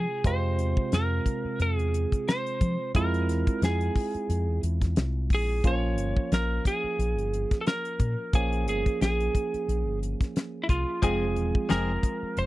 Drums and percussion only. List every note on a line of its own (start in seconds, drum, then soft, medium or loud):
0.24 kick loud
0.24 closed hi-hat medium
0.59 closed hi-hat medium
0.77 kick medium
0.92 snare loud
0.92 closed hi-hat medium
1.26 kick medium
1.26 closed hi-hat medium
1.60 closed hi-hat medium
1.79 closed hi-hat soft
1.94 closed hi-hat medium
2.12 kick medium
2.12 closed hi-hat soft
2.28 snare loud
2.28 closed hi-hat medium
2.46 closed hi-hat soft
2.61 kick medium
2.61 closed hi-hat medium
2.95 kick loud
2.95 closed hi-hat medium
3.14 closed hi-hat soft
3.29 snare soft
3.29 closed hi-hat medium
3.47 kick medium
3.47 closed hi-hat soft
3.62 snare loud
3.62 closed hi-hat medium
3.81 closed hi-hat soft
3.96 kick medium
3.96 open hi-hat medium
4.15 closed hi-hat soft
4.30 closed hi-hat medium
4.63 closed hi-hat medium
4.82 kick medium
4.82 snare soft
4.82 closed hi-hat soft
4.96 snare loud
4.96 closed hi-hat medium
5.30 kick medium
5.30 open hi-hat medium
5.64 kick loud
5.64 closed hi-hat medium
5.98 closed hi-hat medium
6.17 kick medium
6.32 snare loud
6.32 closed hi-hat medium
6.65 kick medium
6.65 snare soft
6.65 closed hi-hat medium
7.00 closed hi-hat medium
7.18 closed hi-hat soft
7.33 closed hi-hat medium
7.51 kick medium
7.51 snare soft
7.51 closed hi-hat soft
7.67 snare loud
7.67 closed hi-hat medium
7.85 closed hi-hat soft
8.00 kick medium
8.00 closed hi-hat medium
8.33 kick loud
8.33 closed hi-hat medium
8.53 closed hi-hat soft
8.68 closed hi-hat medium
8.86 kick medium
8.86 closed hi-hat soft
9.01 snare loud
9.01 closed hi-hat medium
9.20 closed hi-hat soft
9.35 kick medium
9.35 closed hi-hat medium
9.54 closed hi-hat soft
9.69 closed hi-hat medium
10.03 closed hi-hat medium
10.21 kick medium
10.21 snare soft
10.21 closed hi-hat soft
10.36 snare loud
10.36 closed hi-hat medium
10.69 kick medium
10.69 closed hi-hat medium
11.03 kick loud
11.03 closed hi-hat medium
11.36 closed hi-hat medium
11.55 kick medium
11.70 snare loud
11.70 closed hi-hat medium
12.03 kick medium
12.03 closed hi-hat medium
12.37 closed hi-hat medium